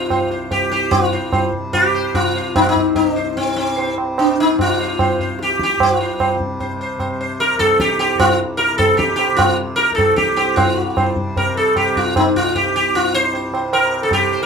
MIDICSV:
0, 0, Header, 1, 4, 480
1, 0, Start_track
1, 0, Tempo, 405405
1, 1086, Time_signature, 3, 2, 24, 8
1, 9235, Tempo, 394997
1, 17326, End_track
2, 0, Start_track
2, 0, Title_t, "Sitar"
2, 0, Program_c, 0, 104
2, 0, Note_on_c, 0, 65, 81
2, 132, Note_on_c, 0, 72, 33
2, 350, Note_off_c, 0, 72, 0
2, 371, Note_on_c, 0, 72, 30
2, 591, Note_off_c, 0, 72, 0
2, 609, Note_on_c, 0, 67, 74
2, 632, Note_off_c, 0, 65, 0
2, 833, Note_off_c, 0, 67, 0
2, 847, Note_on_c, 0, 67, 82
2, 854, Note_on_c, 0, 72, 36
2, 1072, Note_off_c, 0, 72, 0
2, 1079, Note_on_c, 0, 65, 87
2, 1095, Note_off_c, 0, 67, 0
2, 1330, Note_on_c, 0, 72, 37
2, 1554, Note_off_c, 0, 72, 0
2, 1578, Note_on_c, 0, 72, 38
2, 1761, Note_off_c, 0, 65, 0
2, 1799, Note_off_c, 0, 72, 0
2, 2051, Note_on_c, 0, 67, 90
2, 2300, Note_on_c, 0, 72, 41
2, 2522, Note_off_c, 0, 72, 0
2, 2544, Note_on_c, 0, 65, 88
2, 2549, Note_off_c, 0, 67, 0
2, 2785, Note_on_c, 0, 72, 39
2, 2989, Note_off_c, 0, 65, 0
2, 3005, Note_off_c, 0, 72, 0
2, 3027, Note_on_c, 0, 63, 91
2, 3093, Note_off_c, 0, 63, 0
2, 3098, Note_on_c, 0, 65, 73
2, 3178, Note_off_c, 0, 65, 0
2, 3182, Note_on_c, 0, 63, 92
2, 3497, Note_off_c, 0, 63, 0
2, 3501, Note_on_c, 0, 63, 70
2, 3644, Note_off_c, 0, 63, 0
2, 3644, Note_on_c, 0, 62, 70
2, 3744, Note_on_c, 0, 72, 39
2, 3966, Note_off_c, 0, 72, 0
2, 3985, Note_off_c, 0, 62, 0
2, 3989, Note_on_c, 0, 60, 80
2, 4205, Note_off_c, 0, 60, 0
2, 4219, Note_on_c, 0, 60, 83
2, 4476, Note_on_c, 0, 72, 39
2, 4667, Note_off_c, 0, 60, 0
2, 4693, Note_off_c, 0, 72, 0
2, 4960, Note_on_c, 0, 62, 75
2, 5198, Note_off_c, 0, 62, 0
2, 5212, Note_on_c, 0, 63, 84
2, 5443, Note_off_c, 0, 63, 0
2, 5458, Note_on_c, 0, 65, 79
2, 5684, Note_on_c, 0, 72, 34
2, 5896, Note_off_c, 0, 72, 0
2, 5926, Note_on_c, 0, 72, 40
2, 6136, Note_off_c, 0, 72, 0
2, 6165, Note_on_c, 0, 72, 34
2, 6375, Note_off_c, 0, 72, 0
2, 6423, Note_on_c, 0, 67, 77
2, 6425, Note_off_c, 0, 65, 0
2, 6646, Note_off_c, 0, 67, 0
2, 6668, Note_on_c, 0, 67, 83
2, 6888, Note_off_c, 0, 67, 0
2, 6904, Note_on_c, 0, 65, 73
2, 7112, Note_on_c, 0, 72, 38
2, 7325, Note_off_c, 0, 72, 0
2, 7349, Note_on_c, 0, 72, 38
2, 7547, Note_off_c, 0, 65, 0
2, 7563, Note_off_c, 0, 72, 0
2, 7819, Note_on_c, 0, 72, 35
2, 8035, Note_off_c, 0, 72, 0
2, 8062, Note_on_c, 0, 72, 35
2, 8276, Note_off_c, 0, 72, 0
2, 8289, Note_on_c, 0, 72, 31
2, 8508, Note_off_c, 0, 72, 0
2, 8532, Note_on_c, 0, 72, 38
2, 8748, Note_off_c, 0, 72, 0
2, 8762, Note_on_c, 0, 70, 99
2, 8984, Note_off_c, 0, 70, 0
2, 8989, Note_on_c, 0, 69, 96
2, 9234, Note_off_c, 0, 69, 0
2, 9239, Note_on_c, 0, 67, 83
2, 9453, Note_off_c, 0, 67, 0
2, 9468, Note_on_c, 0, 67, 88
2, 9715, Note_on_c, 0, 65, 85
2, 9722, Note_off_c, 0, 67, 0
2, 9943, Note_off_c, 0, 65, 0
2, 10174, Note_on_c, 0, 70, 88
2, 10419, Note_off_c, 0, 70, 0
2, 10424, Note_on_c, 0, 69, 95
2, 10653, Note_off_c, 0, 69, 0
2, 10658, Note_on_c, 0, 67, 79
2, 10872, Note_off_c, 0, 67, 0
2, 10886, Note_on_c, 0, 67, 83
2, 11131, Note_off_c, 0, 67, 0
2, 11137, Note_on_c, 0, 65, 81
2, 11378, Note_off_c, 0, 65, 0
2, 11615, Note_on_c, 0, 70, 102
2, 11840, Note_off_c, 0, 70, 0
2, 11845, Note_on_c, 0, 69, 92
2, 12102, Note_off_c, 0, 69, 0
2, 12106, Note_on_c, 0, 67, 78
2, 12336, Note_off_c, 0, 67, 0
2, 12351, Note_on_c, 0, 67, 75
2, 12589, Note_on_c, 0, 65, 67
2, 12599, Note_off_c, 0, 67, 0
2, 12604, Note_on_c, 0, 72, 35
2, 12834, Note_off_c, 0, 72, 0
2, 13096, Note_on_c, 0, 72, 34
2, 13276, Note_off_c, 0, 65, 0
2, 13321, Note_off_c, 0, 72, 0
2, 13577, Note_on_c, 0, 70, 76
2, 13815, Note_off_c, 0, 70, 0
2, 13820, Note_on_c, 0, 69, 87
2, 14049, Note_off_c, 0, 69, 0
2, 14054, Note_on_c, 0, 67, 75
2, 14302, Note_on_c, 0, 65, 76
2, 14303, Note_off_c, 0, 67, 0
2, 14538, Note_off_c, 0, 65, 0
2, 14543, Note_on_c, 0, 63, 82
2, 14774, Note_off_c, 0, 63, 0
2, 14779, Note_on_c, 0, 65, 81
2, 15015, Note_on_c, 0, 67, 86
2, 15023, Note_off_c, 0, 65, 0
2, 15245, Note_off_c, 0, 67, 0
2, 15259, Note_on_c, 0, 67, 93
2, 15495, Note_on_c, 0, 65, 87
2, 15501, Note_off_c, 0, 67, 0
2, 15729, Note_on_c, 0, 72, 98
2, 15738, Note_off_c, 0, 65, 0
2, 15964, Note_off_c, 0, 72, 0
2, 15978, Note_on_c, 0, 72, 37
2, 16194, Note_off_c, 0, 72, 0
2, 16216, Note_on_c, 0, 72, 37
2, 16432, Note_off_c, 0, 72, 0
2, 16444, Note_on_c, 0, 70, 92
2, 16803, Note_off_c, 0, 70, 0
2, 16808, Note_on_c, 0, 69, 82
2, 16922, Note_off_c, 0, 69, 0
2, 16927, Note_on_c, 0, 67, 89
2, 17163, Note_on_c, 0, 72, 38
2, 17284, Note_off_c, 0, 67, 0
2, 17288, Note_on_c, 0, 70, 80
2, 17326, Note_off_c, 0, 70, 0
2, 17326, Note_off_c, 0, 72, 0
2, 17326, End_track
3, 0, Start_track
3, 0, Title_t, "Tanpura"
3, 0, Program_c, 1, 104
3, 0, Note_on_c, 1, 36, 56
3, 0, Note_on_c, 1, 43, 52
3, 0, Note_on_c, 1, 48, 51
3, 281, Note_off_c, 1, 36, 0
3, 286, Note_on_c, 1, 36, 53
3, 1082, Note_off_c, 1, 43, 0
3, 1087, Note_on_c, 1, 43, 58
3, 1821, Note_off_c, 1, 48, 0
3, 1821, Note_on_c, 1, 48, 52
3, 2541, Note_off_c, 1, 48, 0
3, 2541, Note_on_c, 1, 48, 55
3, 3250, Note_off_c, 1, 36, 0
3, 3255, Note_on_c, 1, 36, 57
3, 3960, Note_off_c, 1, 43, 0
3, 3964, Note_on_c, 1, 43, 58
3, 4683, Note_off_c, 1, 48, 0
3, 4683, Note_on_c, 1, 48, 62
3, 5381, Note_off_c, 1, 48, 0
3, 5381, Note_on_c, 1, 48, 57
3, 6096, Note_off_c, 1, 36, 0
3, 6100, Note_on_c, 1, 36, 51
3, 6816, Note_off_c, 1, 43, 0
3, 6821, Note_on_c, 1, 43, 57
3, 7528, Note_off_c, 1, 48, 0
3, 7528, Note_on_c, 1, 48, 60
3, 8237, Note_off_c, 1, 48, 0
3, 8237, Note_on_c, 1, 48, 57
3, 8927, Note_off_c, 1, 36, 0
3, 8932, Note_on_c, 1, 36, 57
3, 9636, Note_off_c, 1, 43, 0
3, 9641, Note_on_c, 1, 43, 55
3, 10357, Note_off_c, 1, 48, 0
3, 10357, Note_on_c, 1, 48, 58
3, 11085, Note_off_c, 1, 48, 0
3, 11085, Note_on_c, 1, 48, 54
3, 11785, Note_off_c, 1, 36, 0
3, 11790, Note_on_c, 1, 36, 64
3, 12606, Note_off_c, 1, 43, 0
3, 12610, Note_on_c, 1, 43, 60
3, 13328, Note_off_c, 1, 48, 0
3, 13328, Note_on_c, 1, 48, 62
3, 14046, Note_off_c, 1, 48, 0
3, 14046, Note_on_c, 1, 48, 58
3, 14769, Note_off_c, 1, 36, 0
3, 14774, Note_on_c, 1, 36, 53
3, 15480, Note_off_c, 1, 43, 0
3, 15485, Note_on_c, 1, 43, 56
3, 16172, Note_off_c, 1, 48, 0
3, 16172, Note_on_c, 1, 48, 57
3, 16894, Note_off_c, 1, 48, 0
3, 16894, Note_on_c, 1, 48, 54
3, 17326, Note_off_c, 1, 36, 0
3, 17326, Note_off_c, 1, 43, 0
3, 17326, Note_off_c, 1, 48, 0
3, 17326, End_track
4, 0, Start_track
4, 0, Title_t, "Tabla"
4, 122, Note_on_c, 9, 60, 71
4, 122, Note_on_c, 9, 64, 64
4, 241, Note_off_c, 9, 60, 0
4, 241, Note_off_c, 9, 64, 0
4, 363, Note_on_c, 9, 62, 50
4, 482, Note_off_c, 9, 62, 0
4, 602, Note_on_c, 9, 63, 70
4, 602, Note_on_c, 9, 64, 65
4, 720, Note_off_c, 9, 63, 0
4, 720, Note_off_c, 9, 64, 0
4, 1084, Note_on_c, 9, 60, 82
4, 1084, Note_on_c, 9, 64, 82
4, 1202, Note_off_c, 9, 60, 0
4, 1202, Note_off_c, 9, 64, 0
4, 1569, Note_on_c, 9, 60, 74
4, 1569, Note_on_c, 9, 64, 71
4, 1687, Note_off_c, 9, 60, 0
4, 1687, Note_off_c, 9, 64, 0
4, 1803, Note_on_c, 9, 64, 53
4, 1921, Note_off_c, 9, 64, 0
4, 2052, Note_on_c, 9, 63, 73
4, 2052, Note_on_c, 9, 64, 65
4, 2170, Note_off_c, 9, 63, 0
4, 2170, Note_off_c, 9, 64, 0
4, 2539, Note_on_c, 9, 60, 64
4, 2539, Note_on_c, 9, 64, 66
4, 2658, Note_off_c, 9, 60, 0
4, 2658, Note_off_c, 9, 64, 0
4, 3026, Note_on_c, 9, 60, 78
4, 3026, Note_on_c, 9, 64, 69
4, 3144, Note_off_c, 9, 60, 0
4, 3144, Note_off_c, 9, 64, 0
4, 3265, Note_on_c, 9, 64, 47
4, 3383, Note_off_c, 9, 64, 0
4, 3496, Note_on_c, 9, 63, 70
4, 3496, Note_on_c, 9, 64, 70
4, 3614, Note_off_c, 9, 63, 0
4, 3614, Note_off_c, 9, 64, 0
4, 3978, Note_on_c, 9, 63, 60
4, 4096, Note_off_c, 9, 63, 0
4, 4469, Note_on_c, 9, 63, 76
4, 4588, Note_off_c, 9, 63, 0
4, 4712, Note_on_c, 9, 60, 55
4, 4830, Note_off_c, 9, 60, 0
4, 4949, Note_on_c, 9, 60, 74
4, 5067, Note_off_c, 9, 60, 0
4, 5434, Note_on_c, 9, 60, 72
4, 5434, Note_on_c, 9, 64, 66
4, 5552, Note_off_c, 9, 60, 0
4, 5552, Note_off_c, 9, 64, 0
4, 5673, Note_on_c, 9, 62, 60
4, 5792, Note_off_c, 9, 62, 0
4, 5910, Note_on_c, 9, 60, 78
4, 5910, Note_on_c, 9, 64, 65
4, 6028, Note_off_c, 9, 60, 0
4, 6028, Note_off_c, 9, 64, 0
4, 6151, Note_on_c, 9, 64, 55
4, 6269, Note_off_c, 9, 64, 0
4, 6381, Note_on_c, 9, 62, 74
4, 6500, Note_off_c, 9, 62, 0
4, 6510, Note_on_c, 9, 62, 53
4, 6624, Note_on_c, 9, 37, 54
4, 6629, Note_off_c, 9, 62, 0
4, 6742, Note_off_c, 9, 37, 0
4, 6749, Note_on_c, 9, 62, 47
4, 6867, Note_off_c, 9, 62, 0
4, 6870, Note_on_c, 9, 60, 100
4, 6870, Note_on_c, 9, 64, 90
4, 6988, Note_off_c, 9, 60, 0
4, 6988, Note_off_c, 9, 64, 0
4, 7341, Note_on_c, 9, 60, 80
4, 7341, Note_on_c, 9, 64, 72
4, 7460, Note_off_c, 9, 60, 0
4, 7460, Note_off_c, 9, 64, 0
4, 7582, Note_on_c, 9, 64, 50
4, 7700, Note_off_c, 9, 64, 0
4, 7816, Note_on_c, 9, 63, 76
4, 7816, Note_on_c, 9, 64, 60
4, 7934, Note_off_c, 9, 63, 0
4, 7934, Note_off_c, 9, 64, 0
4, 8283, Note_on_c, 9, 60, 65
4, 8283, Note_on_c, 9, 64, 61
4, 8401, Note_off_c, 9, 60, 0
4, 8401, Note_off_c, 9, 64, 0
4, 8768, Note_on_c, 9, 62, 77
4, 8886, Note_off_c, 9, 62, 0
4, 9001, Note_on_c, 9, 63, 71
4, 9001, Note_on_c, 9, 64, 66
4, 9119, Note_off_c, 9, 63, 0
4, 9119, Note_off_c, 9, 64, 0
4, 9232, Note_on_c, 9, 37, 71
4, 9354, Note_off_c, 9, 37, 0
4, 9475, Note_on_c, 9, 60, 68
4, 9596, Note_off_c, 9, 60, 0
4, 9716, Note_on_c, 9, 60, 87
4, 9716, Note_on_c, 9, 64, 74
4, 9837, Note_off_c, 9, 60, 0
4, 9837, Note_off_c, 9, 64, 0
4, 10194, Note_on_c, 9, 62, 72
4, 10316, Note_off_c, 9, 62, 0
4, 10439, Note_on_c, 9, 63, 78
4, 10439, Note_on_c, 9, 64, 69
4, 10561, Note_off_c, 9, 63, 0
4, 10561, Note_off_c, 9, 64, 0
4, 10682, Note_on_c, 9, 37, 75
4, 10804, Note_off_c, 9, 37, 0
4, 10921, Note_on_c, 9, 60, 72
4, 11042, Note_off_c, 9, 60, 0
4, 11163, Note_on_c, 9, 60, 85
4, 11163, Note_on_c, 9, 64, 70
4, 11284, Note_off_c, 9, 60, 0
4, 11284, Note_off_c, 9, 64, 0
4, 11646, Note_on_c, 9, 62, 84
4, 11768, Note_off_c, 9, 62, 0
4, 11888, Note_on_c, 9, 63, 77
4, 11888, Note_on_c, 9, 64, 65
4, 12009, Note_off_c, 9, 63, 0
4, 12009, Note_off_c, 9, 64, 0
4, 12128, Note_on_c, 9, 37, 64
4, 12249, Note_off_c, 9, 37, 0
4, 12363, Note_on_c, 9, 60, 75
4, 12484, Note_off_c, 9, 60, 0
4, 12605, Note_on_c, 9, 60, 88
4, 12605, Note_on_c, 9, 64, 80
4, 12726, Note_off_c, 9, 60, 0
4, 12726, Note_off_c, 9, 64, 0
4, 13085, Note_on_c, 9, 60, 76
4, 13085, Note_on_c, 9, 64, 68
4, 13207, Note_off_c, 9, 60, 0
4, 13207, Note_off_c, 9, 64, 0
4, 13322, Note_on_c, 9, 64, 56
4, 13443, Note_off_c, 9, 64, 0
4, 13567, Note_on_c, 9, 63, 70
4, 13567, Note_on_c, 9, 64, 60
4, 13689, Note_off_c, 9, 63, 0
4, 13689, Note_off_c, 9, 64, 0
4, 14048, Note_on_c, 9, 60, 73
4, 14048, Note_on_c, 9, 64, 53
4, 14169, Note_off_c, 9, 60, 0
4, 14169, Note_off_c, 9, 64, 0
4, 14298, Note_on_c, 9, 64, 46
4, 14419, Note_off_c, 9, 64, 0
4, 14533, Note_on_c, 9, 60, 78
4, 14533, Note_on_c, 9, 64, 66
4, 14655, Note_off_c, 9, 60, 0
4, 14655, Note_off_c, 9, 64, 0
4, 14775, Note_on_c, 9, 64, 53
4, 14897, Note_off_c, 9, 64, 0
4, 15010, Note_on_c, 9, 63, 73
4, 15010, Note_on_c, 9, 64, 60
4, 15132, Note_off_c, 9, 63, 0
4, 15132, Note_off_c, 9, 64, 0
4, 15492, Note_on_c, 9, 63, 70
4, 15614, Note_off_c, 9, 63, 0
4, 15962, Note_on_c, 9, 63, 73
4, 16084, Note_off_c, 9, 63, 0
4, 16206, Note_on_c, 9, 60, 61
4, 16327, Note_off_c, 9, 60, 0
4, 16440, Note_on_c, 9, 60, 70
4, 16561, Note_off_c, 9, 60, 0
4, 16675, Note_on_c, 9, 60, 56
4, 16797, Note_off_c, 9, 60, 0
4, 16903, Note_on_c, 9, 60, 74
4, 16903, Note_on_c, 9, 64, 60
4, 17025, Note_off_c, 9, 60, 0
4, 17025, Note_off_c, 9, 64, 0
4, 17326, End_track
0, 0, End_of_file